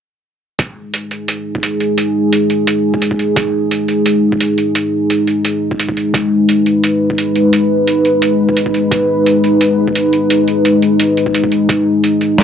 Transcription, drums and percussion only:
0.59 kick, closed hi-hat
0.94 closed hi-hat
1.11 closed hi-hat
1.28 closed hi-hat
1.55 kick
1.63 closed hi-hat
1.80 closed hi-hat
1.98 closed hi-hat
2.33 closed hi-hat
2.50 closed hi-hat
2.67 closed hi-hat
2.94 kick
3.02 closed hi-hat
3.11 kick
3.19 closed hi-hat
3.36 kick, closed hi-hat
3.71 closed hi-hat
3.88 closed hi-hat
4.06 closed hi-hat
4.32 kick
4.41 closed hi-hat
4.58 closed hi-hat
4.75 closed hi-hat
5.10 closed hi-hat
5.27 closed hi-hat
5.45 closed hi-hat
5.71 kick
5.80 closed hi-hat
5.89 kick
5.97 closed hi-hat
6.14 kick, closed hi-hat
6.49 closed hi-hat
6.66 closed hi-hat
6.84 closed hi-hat
7.10 kick
7.18 closed hi-hat
7.36 closed hi-hat
7.53 closed hi-hat
7.87 closed hi-hat
8.05 closed hi-hat
8.22 closed hi-hat
8.49 kick
8.57 closed hi-hat
8.66 kick
8.74 closed hi-hat
8.91 kick, closed hi-hat
9.26 closed hi-hat
9.44 closed hi-hat
9.61 closed hi-hat
9.88 kick
9.95 closed hi-hat
10.13 closed hi-hat
10.30 closed hi-hat
10.48 closed hi-hat
10.65 closed hi-hat
10.82 closed hi-hat
11.00 closed hi-hat
11.17 closed hi-hat
11.26 kick
11.35 closed hi-hat
11.44 kick
11.52 closed hi-hat
11.69 kick, closed hi-hat
12.04 closed hi-hat
12.21 closed hi-hat
12.38 snare, closed hi-hat

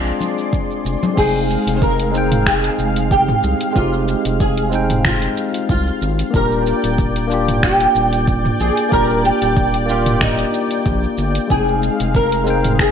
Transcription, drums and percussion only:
0.06 shaker
0.20 high conga, shaker
0.38 shaker
0.53 kick, shaker
0.71 shaker
0.86 shaker
1.03 high conga, shaker
1.17 kick, crash, shaker
1.35 shaker
1.50 shaker
1.67 open hi-hat, shaker
1.82 kick, shaker
2.00 open hi-hat, shaker
2.15 shaker
2.32 mid tom, open hi-hat, shaker
2.46 finger snap, kick, shaker
2.64 open hi-hat, shaker
2.79 shaker
2.96 open hi-hat, shaker
3.11 kick, shaker
3.29 mid tom, shaker
3.43 shaker
3.61 open hi-hat, shaker
3.76 kick, shaker
3.93 shaker
4.08 shaker
4.25 open hi-hat, shaker
4.40 kick, shaker
4.57 open hi-hat, shaker
4.72 shaker
4.90 mid tom, open hi-hat, shaker
5.05 finger snap, kick, mid tom, shaker
5.22 open hi-hat, shaker
5.37 shaker
5.54 open hi-hat, shaker
5.69 kick, shaker
5.87 shaker
6.02 shaker
6.19 open hi-hat, shaker
6.34 kick, shaker
6.52 shaker
6.67 shaker
6.84 open hi-hat, shaker
6.98 kick, shaker
7.16 open hi-hat, shaker
7.31 shaker
7.48 mid tom, open hi-hat, shaker
7.63 finger snap, kick, shaker
7.80 open hi-hat, shaker
7.96 shaker
8.13 open hi-hat, shaker
8.27 kick, shaker
8.45 mid tom, shaker
8.60 shaker
8.77 open hi-hat, shaker
8.92 kick, shaker
9.10 shaker
9.25 shaker
9.42 open hi-hat, shaker
9.57 kick, shaker
9.74 open hi-hat, shaker
9.89 shaker
10.06 mid tom, open hi-hat, shaker
10.21 finger snap, kick, mid tom, shaker
10.39 open hi-hat, shaker
10.54 shaker
10.71 open hi-hat, shaker
10.86 kick, shaker
11.03 shaker
11.18 shaker
11.35 open hi-hat, shaker
11.50 kick, shaker
11.68 shaker
11.83 shaker
12.00 open hi-hat, shaker
12.15 kick, shaker
12.32 open hi-hat, shaker
12.47 shaker
12.64 mid tom, open hi-hat, shaker
12.79 finger snap, kick, shaker

